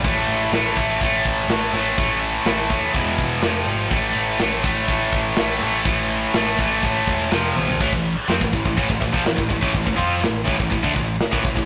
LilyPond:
<<
  \new Staff \with { instrumentName = "Distorted electric guitar" } { \clef bass \time 4/4 \tempo 4 = 124 <a, e a>4 <a, e a>8 <a, e a>8 <a, e a>4 <a, e a>8 <a, e a>8 | <a, e a>4 <a, e a>8 <a, e a>8 <e, b, e>4 <f, c f>8 <f, c f>8 | <a, e a>4 <a, e a>8 <a, e a>8 <a, e a>4 <a, e a>8 <a, e a>8 | <a, e a>4 <a, e a>8 <a, e a>8 <a, e a>4 <f, c f>8 <f, c f>8 |
<a, e>16 <a, e>8 r16 <f c'>16 <a, e>16 <a, e>16 <a, e>16 <a, e>16 <a, e>16 <a, e>16 <bes, f>16 <a, e>16 <a, e>16 <a, e>16 <a, e>16 | <a, e>16 <a, e>16 <f c' f'>8 <a, e>8 <a, e>16 <a, e>16 <a, e>16 <d a>16 <a, e>8 r16 <a, e>16 <a, e>16 <a, e>16 | }
  \new Staff \with { instrumentName = "Picked electric bass" } { \clef bass \time 4/4 a,,8 a,,8 a,,8 a,,8 a,,8 a,,8 a,,8 a,,8 | a,,4 a,,8 dis,8 e,,8 e,,8 f,,8 gis,,8 | a,,8 a,,8 a,,8 a,,8 a,,8 a,,8 a,,8 a,,8 | a,,4 a,,8 a,,8 a,,8 e,,8 f,,8 bes,,8 |
a,,16 a,,8 r16 f,16 a,,16 a,,16 a,,16 a,,16 a,,16 a,,16 bes,,16 a,,16 a,,16 a,,16 a,,16 | a,,16 a,,16 f,8 a,,8 a,,16 a,,16 a,,16 d,16 a,,8 r16 a,,16 a,,16 a,,16 | }
  \new DrumStaff \with { instrumentName = "Drums" } \drummode { \time 4/4 <cymc bd>8 hho8 <hho sn>8 <hho bd>8 <hho bd>8 <hho bd>8 <hho sn>8 <hho sn>8 | <hho bd>8 hho8 <hho sn>8 <hho bd>8 <hho bd>8 <hho bd>8 <hho sn>8 hho8 | <hho bd>8 hho8 sn8 <hho bd>8 <hho bd>8 <hho bd>8 <hho sn>8 hho8 | <hho bd>8 hho8 <hho sn>8 <hho bd>8 <hho bd>8 <hho bd>8 <hho sn>8 tommh16 tomfh16 |
<cymc bd>16 bd16 cymc8 <cymc sn>16 bd16 <cymc bd>16 bd16 <cymc bd>16 bd16 <cymc bd>16 bd16 <cymc sn>16 <bd sn>16 <cymc bd>16 bd16 | <cymc bd>16 bd16 <cymc bd>8 <cymc sn>8 <cymc bd>16 bd16 <cymc bd>16 bd16 <cymc bd>8 <cymc sn>16 bd16 <cymc bd>16 bd16 | }
>>